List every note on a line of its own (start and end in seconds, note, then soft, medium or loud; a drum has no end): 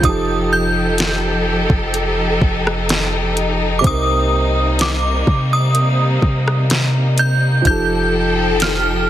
0.00 1.66 F1 loud
0.00 3.79 F3 medium
0.00 3.81 F3 medium
0.00 3.80 D#4 medium
0.00 7.62 D#4 medium
0.00 3.81 G4 medium
0.00 3.81 A4 loud
0.00 kick loud
0.00 closed hi-hat medium
0.05 3.81 G4 medium
0.05 3.83 A4 medium
0.05 0.53 D#6 medium
0.53 2.38 G6 loud
0.98 snare loud
0.98 closed hi-hat medium
1.70 2.38 F1 loud
1.70 kick loud
1.94 closed hi-hat medium
2.42 3.80 F1 loud
2.42 kick medium
2.67 cross-stick loud
2.89 snare loud
2.89 closed hi-hat medium
3.37 closed hi-hat medium
3.79 7.59 C3 medium
3.79 3.85 D6 medium
3.84 5.23 C2 loud
3.84 7.61 C3 medium
3.84 7.61 G3 medium
3.84 7.61 A#3 medium
3.84 7.61 C4 medium
3.84 7.62 D#4 medium
3.84 4.84 D#6 loud
3.84 kick loud
3.84 closed hi-hat medium
3.89 7.64 A#4 medium
4.79 5.54 D6 loud
4.79 snare loud
4.79 closed hi-hat medium
5.27 6.19 C3 loud
5.27 kick loud
5.53 6.67 D#6 medium
5.75 closed hi-hat medium
6.22 7.61 C3 loud
6.22 kick medium
6.48 cross-stick loud
6.70 snare loud
6.70 closed hi-hat medium
7.18 7.66 G6 loud
7.18 closed hi-hat medium
7.62 9.10 F1 loud
7.62 9.10 F3 medium
7.62 9.10 D#4 medium
7.62 9.10 G4 medium
7.62 9.10 A4 loud
7.62 kick loud
7.62 closed hi-hat medium
7.67 9.10 G4 medium
7.67 9.10 A4 medium
7.67 8.64 G6 loud
8.60 9.10 F6 loud
8.60 snare loud
8.60 closed hi-hat medium